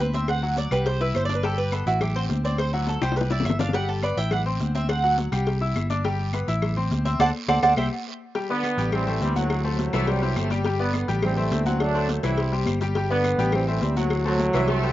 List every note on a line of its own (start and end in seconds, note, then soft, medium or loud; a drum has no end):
0.00 0.66 D2 medium
0.00 0.14 B4 medium
0.13 0.37 C4 medium
0.13 0.38 C5 medium
0.13 0.28 E5 medium
0.13 0.38 C6 medium
0.13 high conga medium
0.13 short guiro medium
0.28 0.55 F#5 loud
0.28 cowbell loud
0.28 high conga soft
0.28 long guiro medium
0.28 claves medium
0.42 0.66 F#3 medium
0.42 0.66 F#4 medium
0.42 0.67 F#5 medium
0.42 high conga soft
0.57 0.71 D5 medium
0.57 cowbell medium
0.57 high conga loud
0.57 short guiro medium
0.71 1.11 C2 loud
0.71 0.95 G3 medium
0.71 0.95 G4 medium
0.71 0.86 B4 medium
0.71 0.95 G5 medium
0.71 cowbell medium
0.71 high conga soft
0.71 short guiro medium
0.71 claves medium
0.86 1.00 C5 medium
0.86 cowbell loud
0.86 high conga soft
0.86 long guiro medium
1.00 1.24 E4 medium
1.00 1.14 B4 medium
1.00 1.24 E5 medium
1.00 1.24 E6 medium
1.00 high conga soft
1.14 1.81 G1 medium
1.14 1.25 C5 medium
1.14 cowbell medium
1.14 high conga medium
1.14 short guiro medium
1.14 claves medium
1.25 1.41 D4 medium
1.25 1.34 D5 loud
1.25 high conga medium
1.25 short guiro medium
1.29 1.41 D5 medium
1.29 1.41 D6 medium
1.29 cowbell medium
1.35 1.44 B4 medium
1.43 1.67 G3 medium
1.43 1.67 G4 medium
1.43 1.58 A4 medium
1.43 1.67 G5 medium
1.43 cowbell loud
1.43 long guiro medium
1.57 1.72 B4 loud
1.57 high conga soft
1.72 1.84 B3 medium
1.72 1.86 A4 medium
1.72 1.84 B4 medium
1.72 1.84 B5 medium
1.72 cowbell medium
1.72 high conga medium
1.72 short guiro medium
1.72 claves medium
1.86 2.27 A1 loud
1.86 2.10 E4 medium
1.86 2.01 F#4 medium
1.86 2.10 E5 medium
1.86 2.11 E6 medium
1.86 high conga soft
1.86 short guiro medium
2.01 2.15 G4 medium
2.01 cowbell loud
2.01 high conga soft
2.01 low conga medium
2.01 long guiro medium
2.01 claves medium
2.15 2.39 C4 medium
2.15 2.39 C5 medium
2.15 2.24 C5 loud
2.15 2.39 C6 medium
2.15 high conga soft
2.29 2.96 D2 medium
2.29 cowbell medium
2.29 high conga medium
2.29 short guiro medium
2.44 2.68 C4 medium
2.44 2.68 C5 medium
2.44 2.59 D5 loud
2.44 2.68 C6 medium
2.44 high conga medium
2.44 short guiro medium
2.58 2.73 C5 loud
2.58 cowbell loud
2.58 high conga soft
2.58 long guiro medium
2.58 claves medium
2.73 2.97 F#3 medium
2.73 2.87 E4 medium
2.73 2.97 F#4 medium
2.73 2.97 F#5 medium
2.73 high conga soft
2.87 3.02 A4 medium
2.87 cowbell medium
2.87 high conga loud
2.87 short guiro medium
3.01 3.42 C2 loud
3.01 3.26 G3 medium
3.01 3.26 G4 medium
3.01 3.16 C5 loud
3.01 3.26 G5 medium
3.01 cowbell medium
3.01 high bongo medium
3.01 high conga soft
3.01 short guiro medium
3.01 claves medium
3.12 high bongo medium
3.12 high conga soft
3.16 3.31 B4 loud
3.16 cowbell loud
3.16 long guiro medium
3.21 high bongo medium
3.30 3.55 E4 medium
3.30 3.45 D5 medium
3.30 3.55 E5 medium
3.30 3.55 E6 medium
3.30 high bongo medium
3.30 high conga soft
3.40 low bongo medium
3.44 4.11 G1 medium
3.44 3.60 E5 medium
3.44 cowbell medium
3.44 high conga medium
3.44 short guiro medium
3.44 claves medium
3.50 low bongo medium
3.59 3.72 D4 medium
3.59 3.72 D5 medium
3.59 3.74 F5 loud
3.59 3.72 D6 medium
3.59 cowbell medium
3.59 low bongo loud
3.59 short guiro medium
3.69 low bongo medium
3.73 3.98 G3 medium
3.73 3.98 G4 medium
3.73 3.88 F#5 loud
3.73 3.98 G5 medium
3.73 cowbell loud
3.73 high conga soft
3.73 long guiro medium
3.88 4.03 A4 medium
3.88 high conga soft
4.02 4.15 B3 medium
4.02 4.15 B4 medium
4.02 4.17 D5 medium
4.02 4.15 B5 medium
4.02 cowbell medium
4.02 high conga medium
4.02 short guiro medium
4.02 claves medium
4.17 4.57 A1 loud
4.17 4.41 E4 medium
4.17 4.41 E5 medium
4.17 4.31 G5 loud
4.17 4.41 E6 medium
4.17 high conga soft
4.17 short guiro medium
4.31 4.41 F#5 loud
4.31 cowbell loud
4.31 high conga soft
4.31 low conga medium
4.31 long guiro medium
4.31 claves medium
4.46 4.70 C4 medium
4.46 4.70 C5 medium
4.46 4.70 C6 medium
4.46 high conga soft
4.60 5.27 D2 medium
4.60 cowbell medium
4.60 high conga medium
4.60 short guiro medium
4.75 4.98 C4 medium
4.75 4.99 C5 medium
4.75 4.89 E5 loud
4.75 4.99 C6 medium
4.75 high conga medium
4.75 short guiro medium
4.89 5.16 F#5 loud
4.89 cowbell loud
4.89 long guiro medium
4.89 claves medium
5.03 5.27 F#3 medium
5.03 5.27 F#4 medium
5.03 5.28 F#5 medium
5.03 high conga soft
5.18 cowbell medium
5.18 high conga medium
5.18 short guiro medium
5.32 5.72 C2 loud
5.32 5.56 G3 medium
5.32 5.56 G4 medium
5.32 5.56 G5 medium
5.32 cowbell medium
5.32 high conga soft
5.32 short guiro medium
5.32 claves medium
5.47 cowbell loud
5.47 high conga soft
5.47 long guiro medium
5.61 5.85 E4 medium
5.61 5.85 E5 medium
5.61 5.85 E6 medium
5.61 high conga soft
5.76 6.42 G1 medium
5.76 cowbell medium
5.76 high conga medium
5.76 short guiro medium
5.76 claves medium
5.90 6.02 D4 medium
5.90 6.02 D5 medium
5.90 6.02 D6 medium
5.90 cowbell medium
5.90 high conga medium
5.90 short guiro medium
6.04 6.28 G3 medium
6.04 6.28 G4 medium
6.04 6.29 G5 medium
6.04 cowbell loud
6.04 high conga soft
6.04 long guiro medium
6.19 high conga soft
6.33 6.45 B3 medium
6.33 6.46 B4 medium
6.33 6.46 B5 medium
6.33 cowbell medium
6.33 high conga medium
6.33 short guiro medium
6.33 claves medium
6.48 6.88 A1 loud
6.48 6.72 E4 medium
6.48 6.72 E5 medium
6.48 6.72 E6 medium
6.48 high conga soft
6.48 short guiro medium
6.62 cowbell loud
6.62 high conga soft
6.62 low conga medium
6.62 long guiro medium
6.62 claves medium
6.76 7.00 C4 medium
6.76 7.00 C5 medium
6.76 7.01 C6 medium
6.76 high conga soft
6.76 low conga medium
6.91 7.18 D2 medium
6.91 cowbell medium
6.91 high conga medium
6.91 short guiro medium
7.05 7.17 C4 medium
7.05 7.17 C5 medium
7.05 7.19 E5 loud
7.05 7.18 C6 medium
7.05 high conga medium
7.05 short guiro medium
7.20 7.30 D2 loud
7.20 7.29 A4 loud
7.20 7.29 C5 loud
7.20 7.29 D5 loud
7.20 7.29 F#5 loud
7.20 7.30 A5 loud
7.20 cowbell loud
7.20 high conga loud
7.20 long guiro loud
7.20 claves medium
7.48 7.59 D2 loud
7.48 7.58 A4 loud
7.48 7.58 C5 loud
7.48 7.58 D5 medium
7.48 7.58 D5 loud
7.48 7.58 F#5 medium
7.48 7.58 A5 medium
7.48 cowbell loud
7.48 high conga medium
7.48 long guiro loud
7.48 claves loud
7.62 7.74 D2 loud
7.62 7.72 A4 loud
7.62 7.72 C5 loud
7.62 7.72 D5 loud
7.62 7.72 D5 medium
7.62 7.72 F#5 medium
7.62 7.72 A5 medium
7.62 cowbell loud
7.62 high conga loud
7.62 long guiro loud
7.62 claves loud
7.77 7.88 C2 loud
7.77 7.87 G4 medium
7.77 7.87 C5 loud
7.77 7.87 C5 medium
7.77 7.87 E5 loud
7.77 7.87 G5 medium
7.77 cowbell loud
7.77 high conga loud
7.77 long guiro loud
7.77 claves loud
8.35 8.47 G3 medium
8.35 8.47 G4 medium
8.35 8.47 G5 medium
8.35 cowbell loud
8.35 high conga soft
8.35 long guiro medium
8.49 8.90 D3 medium
8.49 8.89 B3 loud
8.49 8.73 B3 medium
8.49 8.73 B4 medium
8.49 8.74 D5 medium
8.49 high conga soft
8.63 cowbell medium
8.63 high conga medium
8.63 short guiro medium
8.63 claves medium
8.77 9.18 A1 loud
8.77 9.02 G3 medium
8.77 9.02 G4 medium
8.77 9.02 G5 medium
8.77 short guiro medium
8.92 9.47 E3 medium
8.92 9.21 G3 medium
8.92 9.07 C4 loud
8.92 cowbell loud
8.92 high conga soft
8.92 low conga medium
8.92 long guiro medium
8.92 claves medium
9.06 9.20 A3 loud
9.06 9.19 C4 medium
9.06 9.19 C5 medium
9.06 9.19 E5 medium
9.06 high conga soft
9.06 low conga medium
9.21 9.88 D2 medium
9.21 9.35 G3 loud
9.21 9.33 C4 medium
9.21 9.33 C5 medium
9.21 9.33 E5 medium
9.21 cowbell medium
9.21 high conga medium
9.21 short guiro medium
9.36 9.64 A2 medium
9.36 9.64 C3 medium
9.36 9.59 F#3 medium
9.36 9.64 F#3 loud
9.36 9.60 F#4 medium
9.36 9.60 F#5 medium
9.36 high conga medium
9.36 short guiro medium
9.50 cowbell loud
9.50 high conga soft
9.50 long guiro medium
9.50 claves medium
9.64 10.47 A2 medium
9.64 10.47 C3 medium
9.64 10.47 F#3 medium
9.64 9.88 A3 medium
9.64 9.88 A4 medium
9.64 9.88 C5 medium
9.64 high conga soft
9.79 cowbell medium
9.79 high conga loud
9.79 short guiro medium
9.93 10.34 C2 loud
9.93 10.05 E3 medium
9.93 10.07 A3 loud
9.93 10.05 E4 loud
9.93 10.06 E5 loud
9.93 cowbell medium
9.93 high conga soft
9.93 short guiro medium
9.93 claves medium
10.07 10.22 G3 loud
10.07 10.20 G3 medium
10.07 10.20 G4 medium
10.07 10.20 C5 medium
10.07 cowbell loud
10.07 high conga soft
10.07 long guiro medium
10.22 10.37 E3 medium
10.22 10.46 G3 medium
10.22 10.46 G4 medium
10.22 10.46 C5 medium
10.22 high conga soft
10.36 11.03 G1 medium
10.36 10.51 A3 loud
10.36 cowbell medium
10.36 high conga medium
10.36 short guiro medium
10.36 claves medium
10.50 10.72 G3 medium
10.50 10.63 G3 loud
10.50 10.63 G4 medium
10.50 10.63 G5 medium
10.50 cowbell medium
10.50 high conga medium
10.50 short guiro medium
10.64 10.77 G3 loud
10.64 10.77 G4 medium
10.64 10.77 G5 medium
10.64 cowbell loud
10.64 high conga soft
10.64 long guiro medium
10.79 11.20 D3 medium
10.79 11.06 B3 medium
10.79 11.03 B3 medium
10.79 11.03 B4 medium
10.79 11.03 D5 medium
10.79 high conga soft
10.94 cowbell medium
10.94 high conga medium
10.94 short guiro medium
10.94 claves medium
11.08 11.49 A1 loud
11.08 11.32 G3 loud
11.08 11.32 G4 medium
11.08 11.32 G5 loud
11.08 high conga soft
11.08 short guiro medium
11.22 11.37 E3 medium
11.22 11.77 G3 medium
11.22 11.36 C4 loud
11.22 cowbell loud
11.22 high conga soft
11.22 low conga medium
11.22 long guiro medium
11.22 claves medium
11.37 11.78 C3 medium
11.37 11.78 E3 medium
11.37 11.66 A3 loud
11.37 11.49 C4 medium
11.37 11.49 C5 medium
11.37 11.49 E5 medium
11.37 high conga soft
11.37 low conga medium
11.51 12.18 D2 medium
11.51 11.63 C4 medium
11.51 11.63 C5 medium
11.51 11.64 E5 medium
11.51 cowbell medium
11.51 high conga medium
11.51 short guiro medium
11.65 11.90 F#3 medium
11.65 11.81 C4 loud
11.65 11.90 F#4 medium
11.65 11.90 F#5 medium
11.65 high conga medium
11.65 short guiro medium
11.80 12.34 F#3 medium
11.80 12.35 A3 medium
11.80 12.09 D4 loud
11.80 cowbell loud
11.80 high conga soft
11.80 long guiro medium
11.80 claves medium
11.94 12.18 A3 medium
11.94 12.18 A4 medium
11.94 12.19 C5 medium
11.94 high conga soft
12.09 cowbell medium
12.09 high conga medium
12.09 short guiro medium
12.23 12.64 C2 loud
12.23 12.35 E3 medium
12.23 12.78 G3 medium
12.23 12.78 C4 medium
12.23 12.35 E4 loud
12.23 12.51 E4 loud
12.23 12.36 E5 loud
12.23 cowbell medium
12.23 high conga soft
12.23 short guiro medium
12.23 claves medium
12.37 12.50 G3 medium
12.37 12.50 G4 medium
12.37 12.50 C5 medium
12.37 cowbell loud
12.37 high conga soft
12.37 long guiro medium
12.52 12.76 G3 medium
12.52 12.76 G4 medium
12.52 12.76 C5 medium
12.52 high conga soft
12.66 13.33 G1 medium
12.66 cowbell medium
12.66 high conga loud
12.66 short guiro medium
12.66 claves medium
12.80 12.93 G3 medium
12.80 12.93 G4 medium
12.80 12.94 G5 medium
12.80 cowbell medium
12.80 high conga medium
12.80 short guiro medium
12.95 13.08 G3 medium
12.95 13.08 G4 medium
12.95 13.08 G5 medium
12.95 cowbell loud
12.95 long guiro medium
13.09 13.51 D3 medium
13.09 13.34 B3 medium
13.09 13.51 B3 loud
13.09 13.34 B4 medium
13.09 13.34 D5 medium
13.09 high conga soft
13.24 cowbell medium
13.24 high conga medium
13.24 short guiro medium
13.24 claves medium
13.38 13.79 A1 loud
13.38 13.62 G3 medium
13.38 13.63 G4 medium
13.38 13.63 G5 medium
13.38 high conga soft
13.38 short guiro medium
13.52 14.07 E3 medium
13.52 13.81 G3 medium
13.52 13.67 C4 medium
13.52 cowbell loud
13.52 high conga soft
13.52 low conga medium
13.52 long guiro medium
13.52 claves medium
13.67 13.81 A3 medium
13.67 13.79 C4 medium
13.67 13.80 C5 medium
13.67 13.80 E5 medium
13.67 high conga soft
13.81 14.48 D2 medium
13.81 13.97 G3 medium
13.81 13.94 C4 medium
13.81 13.94 C5 medium
13.81 13.94 E5 medium
13.81 cowbell medium
13.81 high conga medium
13.81 short guiro medium
13.96 14.26 A2 medium
13.96 14.25 C3 medium
13.96 14.20 F#3 medium
13.96 14.24 F#3 medium
13.96 14.20 F#4 medium
13.96 14.20 F#5 medium
13.96 high conga medium
13.96 short guiro medium
14.10 cowbell loud
14.10 long guiro medium
14.10 claves medium
14.25 14.93 A2 medium
14.25 14.93 C3 medium
14.25 14.93 F#3 loud
14.25 14.49 A3 medium
14.25 14.49 A4 medium
14.25 14.49 C5 medium
14.25 high conga soft
14.39 cowbell medium
14.39 high conga loud
14.39 short guiro medium
14.53 14.93 C2 loud
14.53 14.57 E3 medium
14.53 14.66 E3 loud
14.53 14.66 E4 loud
14.53 14.66 E5 loud
14.53 cowbell medium
14.53 high conga soft
14.53 short guiro medium
14.53 claves medium
14.61 14.68 D3 medium
14.68 14.80 G3 medium
14.68 14.93 A3 loud
14.68 14.80 G4 medium
14.68 14.81 C5 medium
14.68 cowbell loud
14.68 high conga soft
14.68 long guiro medium
14.82 14.93 G3 medium
14.82 14.93 G4 medium
14.82 14.93 C5 medium
14.82 high conga soft